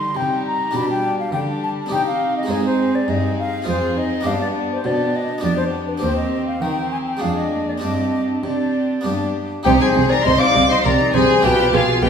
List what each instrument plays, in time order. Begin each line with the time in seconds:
Already playing: harpsichord D3 D#4 G4, cello section D3, viola section G3, violin section D#4 G4, flute C6
0.15 harpsichord C3, cello section C3, viola section G3, violin section D#4 G4, flute G5
0.46 flute A#5
0.71 harpsichord B2 D4 G4, cello section B2, viola section G3, violin section D4
0.75 violin section G4, flute B5
0.90 flute G5
1.20 flute F5
1.32 harpsichord D3, cello section D3, viola section G3, violin section D4 G4, flute G5
1.64 flute A5
1.86 harpsichord C4 D#4 G4
1.91 harpsichord C3, cello section C3, viola section C4, violin section D#4 G4, flute G5
2.06 flute F5
2.37 flute D#5
2.43 harpsichord G#3 C4 D#4
2.48 harpsichord G#2 G#4, cello section G#2, viola section C4, violin section D#4 G#4, flute G#4
2.65 flute C5
2.95 flute D5
3.08 harpsichord G2, cello section G2, viola section C4, violin section D#4 G#4, flute D#5
3.39 flute F5
3.62 harpsichord C4 F4 G#4
3.66 harpsichord F2, cello section F2, viola section C4, violin section F4 G#4, flute C5
3.96 violin section D#4, flute D#5
4.21 harpsichord B3 D4 G4
4.25 harpsichord G2, cello section G2, viola section B3, violin section D4 G4, flute F5
4.41 flute D5
4.72 flute C5
4.84 harpsichord B2, cello section B2, viola section B3, violin section D4 G4, flute D5
5.16 flute D#5
5.38 harpsichord B3 D4 G4
5.43 harpsichord F2, cello section F2, viola section B3, violin section D4 G4, flute D5
5.57 flute C5
5.88 flute B4
5.98 harpsichord C4 G4
6.02 harpsichord D#2, cello section D#2, viola section C4, violin section C4 G4, flute C5
6.17 flute D#5
6.47 flute F5
6.61 harpsichord D#3, cello section D#3, viola section C4, violin section C4 G4, flute G5
6.92 flute G#5
7.08 flute G5
7.17 harpsichord G#3 D4 G#4
7.21 harpsichord F2, cello section F2, viola section G#3, violin section D4 G#4, flute F5
7.37 flute D#5
7.52 viola section A#3
7.68 flute D5
7.78 harpsichord C4 D4 G4
7.82 harpsichord G2, cello section G2, viola section C4, violin section D4 G4, flute D#5
8.44 harpsichord C3, cello section C3, viola section C4, violin section D4 G4, flute D5
9.01 harpsichord B3 D4 G4, viola section B3, violin section G4
9.05 cello section G2, harpsichord G2, violin section D4
9.63 double bass section C2, harpsichord C3 D#4 G4, cello section C3, viola section C4, violin section G4 G5, flute C5
9.81 viola section D#4, violin section G#4 G#5, flute C5
9.95 double bass section C2, harpsichord C3, cello section C3, viola section C4
10.10 viola section D#4, violin section A#4 A#5, flute D5
10.23 double bass section C2, harpsichord C3, cello section C3, viola section C4, violin section C5 C6, flute D#5
10.39 viola section D#4, violin section D5 D6, flute F5
10.54 double bass section C2, harpsichord C3, cello section C3, viola section C4
10.69 viola section D#4, violin section C5 C6, flute D#5
10.83 double bass section C2, harpsichord C3, cello section C3, viola section C4, violin section A#4 A#5, flute D5
11.00 viola section D#4
11.14 double bass section C2, harpsichord C3, cello section C3, viola section C4, violin section G#4 G#5, flute C5
11.30 viola section D#4
11.41 double bass section B1, harpsichord B2 D4 F4, cello section B2, violin section G4 G5, viola section G4, flute B4
11.58 viola section F4
11.73 double bass section B1, harpsichord B2, cello section B2, violin section F4 F5, viola section G4, flute G#4
11.89 viola section F4
12.02 double bass section B1, harpsichord B2, cello section B2, viola section G4, violin section G4 G5, flute B4